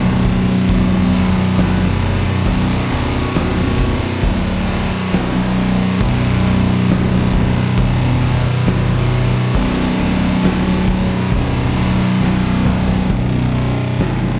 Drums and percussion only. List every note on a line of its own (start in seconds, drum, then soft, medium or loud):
0.25 kick loud
0.25 snare soft
0.25 crash medium
0.69 kick loud
0.69 crash medium
1.13 crash medium
1.57 snare loud
1.57 crash medium
2.02 crash medium
2.46 kick loud
2.46 crash medium
2.90 crash medium
3.34 snare loud
3.34 crash medium
3.79 kick medium
3.79 crash medium
4.23 kick loud
4.23 crash medium
4.68 crash medium
5.12 snare loud
5.12 crash medium
5.57 crash medium
6.01 kick loud
6.01 crash medium
6.46 crash medium
6.90 snare loud
6.90 crash medium
7.33 kick medium
7.33 snare soft
7.33 crash medium
7.78 kick loud
7.78 crash medium
8.23 crash medium
8.66 snare loud
8.66 crash medium
9.11 crash medium
9.55 kick loud
9.55 crash loud
9.99 crash medium
10.43 snare loud
10.43 crash loud
10.88 kick loud
10.88 crash medium
11.32 kick loud
11.32 crash medium
11.76 crash medium
12.23 snare medium
12.65 mid tom medium
12.88 floor tom medium
13.10 kick loud
13.10 open hi-hat medium
13.54 open hi-hat medium
13.99 snare loud
13.99 open hi-hat medium